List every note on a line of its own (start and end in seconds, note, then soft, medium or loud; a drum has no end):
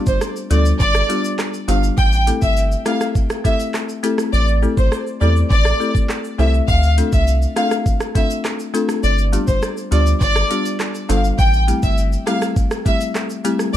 0.06 0.18 G1 medium
0.06 0.17 C5 medium
0.06 kick medium
0.06 shaker medium
0.21 cross-stick loud
0.21 shaker medium
0.36 shaker soft
0.36 shaker medium
0.50 0.73 D2 loud
0.50 0.62 G3 medium
0.50 0.62 B3 medium
0.50 0.62 D4 medium
0.50 0.62 F4 medium
0.50 0.62 A4 medium
0.50 0.61 D5 medium
0.50 closed hi-hat medium
0.50 shaker medium
0.65 shaker medium
0.80 1.02 G1 loud
0.80 1.22 D5 loud
0.80 kick loud
0.80 shaker medium
0.95 cross-stick loud
0.95 shaker medium
1.09 1.21 G3 medium
1.09 1.21 B3 medium
1.09 1.21 D4 medium
1.09 1.21 F4 medium
1.09 1.21 G4 medium
1.09 closed hi-hat medium
1.09 shaker medium
1.24 shaker medium
1.39 cross-stick medium
1.39 clap medium
1.39 shaker medium
1.54 shaker soft
1.54 shaker medium
1.68 1.90 G1 loud
1.68 1.80 G3 medium
1.68 1.80 B3 medium
1.68 1.80 D4 medium
1.68 1.80 F4 medium
1.68 1.80 G4 medium
1.68 1.79 F5 medium
1.68 closed hi-hat medium
1.68 high timbale medium
1.68 shaker medium
1.83 shaker medium
1.98 2.31 A1 loud
1.98 2.18 G5 loud
1.98 kick loud
1.98 shaker medium
2.12 shaker medium
2.27 2.39 A3 medium
2.27 2.39 C4 medium
2.27 2.39 E4 medium
2.27 2.39 G4 medium
2.27 2.39 A4 medium
2.27 closed hi-hat medium
2.27 shaker medium
2.42 2.75 G1 medium
2.42 2.52 E5 medium
2.42 kick medium
2.42 shaker medium
2.57 shaker medium
2.72 shaker medium
2.86 2.98 A3 medium
2.86 2.98 C4 medium
2.86 2.98 E4 medium
2.86 2.98 G4 medium
2.86 2.98 A4 medium
2.86 2.96 F5 medium
2.86 cross-stick loud
2.86 closed hi-hat medium
2.86 shaker medium
3.01 cross-stick medium
3.01 shaker medium
3.15 kick loud
3.15 shaker medium
3.30 cross-stick loud
3.30 shaker medium
3.44 3.56 A3 medium
3.44 3.56 C4 medium
3.44 3.56 E4 medium
3.44 3.57 G4 medium
3.44 3.57 A4 medium
3.44 3.55 E5 medium
3.44 kick loud
3.44 closed hi-hat medium
3.44 shaker medium
3.60 shaker medium
3.74 cross-stick medium
3.74 clap medium
3.74 shaker medium
3.89 shaker soft
3.89 shaker medium
4.03 4.15 A3 medium
4.03 4.15 C4 medium
4.03 4.15 E4 medium
4.03 4.15 G4 medium
4.03 4.15 A4 loud
4.03 closed hi-hat medium
4.03 shaker medium
4.18 cross-stick loud
4.18 shaker medium
4.33 4.66 A1 loud
4.33 4.43 D5 loud
4.33 shaker medium
4.48 shaker medium
4.62 4.74 A3 medium
4.62 4.74 C4 medium
4.62 4.74 E4 medium
4.62 4.74 G4 medium
4.62 4.74 A4 medium
4.62 shaker medium
4.77 4.88 A1 loud
4.77 4.87 C5 medium
4.77 kick medium
4.77 shaker medium
4.92 cross-stick loud
4.92 shaker medium
5.07 shaker medium
5.21 5.43 E2 medium
5.21 5.33 A3 medium
5.21 5.33 C4 medium
5.21 5.33 E4 medium
5.21 5.33 G4 medium
5.21 5.33 A4 medium
5.21 5.31 D5 medium
5.21 shaker medium
5.36 shaker medium
5.51 5.73 A1 loud
5.51 5.92 D5 loud
5.51 kick loud
5.51 shaker medium
5.65 cross-stick loud
5.65 shaker medium
5.80 5.92 A3 medium
5.80 5.92 C4 medium
5.80 5.92 E4 medium
5.80 5.92 G4 medium
5.80 5.92 A4 medium
5.80 shaker medium
5.95 kick loud
5.95 shaker medium
6.09 cross-stick medium
6.09 clap medium
6.09 shaker medium
6.24 shaker medium
6.39 6.61 C2 loud
6.39 6.51 A3 medium
6.39 6.51 C4 medium
6.39 6.51 E4 medium
6.39 6.51 G4 medium
6.39 6.51 A4 medium
6.39 6.49 E5 medium
6.39 high timbale medium
6.39 shaker medium
6.54 shaker medium
6.68 7.01 D2 loud
6.68 6.89 F5 loud
6.68 kick loud
6.68 shaker medium
6.83 shaker medium
6.98 7.09 A3 medium
6.98 7.09 C4 medium
6.98 7.10 D4 medium
6.98 7.10 F4 medium
6.98 7.10 A4 medium
6.98 closed hi-hat medium
6.98 shaker medium
7.12 7.46 C2 medium
7.12 7.23 E5 medium
7.12 kick medium
7.12 shaker medium
7.27 shaker medium
7.42 shaker medium
7.42 shaker soft
7.56 7.68 A3 medium
7.56 7.68 C4 medium
7.56 7.68 D4 medium
7.56 7.68 F4 medium
7.56 7.68 A4 medium
7.56 7.67 F5 medium
7.56 cross-stick loud
7.56 closed hi-hat medium
7.56 shaker medium
7.71 cross-stick loud
7.71 shaker medium
7.86 kick loud
7.86 shaker medium
8.00 cross-stick loud
8.00 shaker medium
8.00 shaker soft
8.15 8.27 A3 medium
8.15 8.27 C4 medium
8.15 8.27 D4 medium
8.15 8.27 F4 medium
8.15 8.27 A4 medium
8.15 8.26 E5 medium
8.15 kick loud
8.15 closed hi-hat medium
8.15 shaker medium
8.30 shaker medium
8.45 cross-stick medium
8.45 clap medium
8.45 shaker medium
8.59 shaker medium
8.59 shaker soft
8.74 8.86 A3 medium
8.74 8.86 C4 medium
8.74 8.86 D4 medium
8.74 8.86 F4 medium
8.74 8.86 A4 loud
8.74 closed hi-hat medium
8.74 shaker medium
8.89 cross-stick loud
8.89 shaker medium
9.03 9.37 G1 loud
9.03 9.14 D5 loud
9.03 shaker medium
9.18 shaker medium
9.33 9.45 G3 medium
9.33 9.45 B3 medium
9.33 9.45 D4 medium
9.33 9.45 F4 medium
9.33 9.45 G4 medium
9.33 closed hi-hat medium
9.33 shaker medium
9.48 9.59 G1 loud
9.48 9.58 C5 medium
9.48 kick medium
9.48 shaker medium
9.63 cross-stick loud
9.63 shaker medium
9.77 shaker medium
9.77 shaker soft
9.91 10.14 D2 loud
9.91 10.03 G3 medium
9.91 10.03 B3 medium
9.91 10.03 D4 medium
9.91 10.03 F4 medium
9.91 10.04 G4 medium
9.91 10.02 D5 medium
9.91 closed hi-hat medium
9.91 shaker medium
10.06 shaker medium
10.21 10.43 G1 loud
10.21 10.63 D5 loud
10.21 kick loud
10.21 shaker medium
10.36 cross-stick loud
10.36 shaker medium
10.50 10.62 G3 medium
10.50 10.62 B3 medium
10.50 10.62 D4 medium
10.50 10.62 F4 medium
10.50 10.62 G4 medium
10.50 closed hi-hat medium
10.50 shaker medium
10.65 shaker medium
10.80 cross-stick medium
10.80 clap medium
10.80 shaker medium
10.95 shaker medium
10.95 shaker soft
11.09 11.32 G1 loud
11.09 11.21 G3 medium
11.09 11.21 B3 medium
11.09 11.21 D4 medium
11.09 11.21 F4 medium
11.09 11.21 A4 medium
11.09 11.19 F5 medium
11.09 closed hi-hat medium
11.09 high timbale medium
11.09 shaker medium
11.24 shaker medium
11.39 11.72 A1 loud
11.39 11.59 G5 loud
11.39 kick loud
11.39 shaker medium
11.53 shaker medium
11.68 11.80 G3 medium
11.68 11.80 A3 medium
11.68 11.80 C4 medium
11.68 11.80 E4 medium
11.68 11.80 G4 medium
11.68 closed hi-hat medium
11.68 shaker medium
11.83 12.16 G1 medium
11.83 11.93 E5 medium
11.83 kick medium
11.83 shaker medium
11.98 shaker medium
12.13 shaker medium
12.27 12.39 G3 medium
12.27 12.39 A3 medium
12.27 12.39 C4 medium
12.27 12.39 E4 medium
12.27 12.39 G4 medium
12.27 12.37 F5 medium
12.27 cross-stick loud
12.27 closed hi-hat medium
12.27 shaker medium
12.42 cross-stick medium
12.42 shaker medium
12.56 kick loud
12.56 shaker medium
12.71 cross-stick loud
12.71 shaker medium
12.86 12.97 G3 medium
12.86 12.98 A3 medium
12.86 12.98 C4 medium
12.86 12.98 E4 medium
12.86 12.98 G4 medium
12.86 12.96 E5 medium
12.86 kick loud
12.86 closed hi-hat medium
12.86 shaker medium
13.01 shaker medium
13.15 cross-stick medium
13.15 clap medium
13.15 shaker medium
13.30 shaker medium
13.30 shaker soft
13.44 13.56 G3 medium
13.44 13.56 A3 medium
13.44 13.57 C4 medium
13.44 13.57 E4 medium
13.44 13.57 G4 loud
13.44 closed hi-hat medium
13.44 shaker medium
13.59 cross-stick medium
13.59 shaker medium